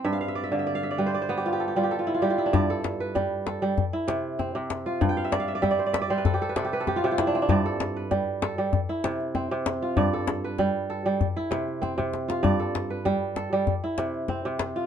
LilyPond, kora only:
<<
  \new Staff \with { instrumentName = "Kora" } { \time 4/4 \key g \mixolydian \tempo 4 = 97 << { e''32 f''32 f''32 e''32 d''32 e''32 f''32 e''32 d''32 f''32 e''32 d''32 b'32 c''32 d''32 c''32 b'32 g'32 f'32 g'32 a'32 g'32 f'32 g'32 a'32 f'32 e'32 f'32 g'32 f'32 e'32 d'32~ | d'32 r2. r8. r32 | r32 g''32 f''32 e''32 d''32 f''32 e''32 d''32 e''32 d''32 c''32 d''32 e''32 d''32 c''32 b'32 a'32 g'32 a'32 b'32 a'32 g'32 b'32 a'32 g'32 f'32 g'32 f'32 e'32 d'32 c'32 d'32~ | d'32 r2. r8. r32 |
r1 | r1 | } \\ { c'16 r2. r8. | d''16 a'8 b'8. a'8. e'8. c'8. f'16~ | f'16 r2. r8. | d''16 a'8 b'8. a'8. e'8. c'8. f'16 |
d''16 a'8 b'8. a'8. e'8. c'8. f'16 | d''16 a'8 b'8. a'8. e'8. c'8. f'16 | } >> }
  \new Staff \with { instrumentName = "Kora" } { \clef bass \time 4/4 \key g \mixolydian g,8 r16 d8 r16 g8 b8 r16 g8 r16 g8 | g,8 r8 g8 r16 g16 r8 c8 r16 c8 r16 | g,8 r8 g8 r16 g16 r8 c8 r16 c8 r16 | g,8 r8 g8 r16 g16 r8 c8 r16 c8 r16 |
g,8 r8 g8 r16 g16 r8 c8 r16 c8 r16 | g,8 r8 g8 r16 g16 r8 c8 r16 c8 r16 | }
>>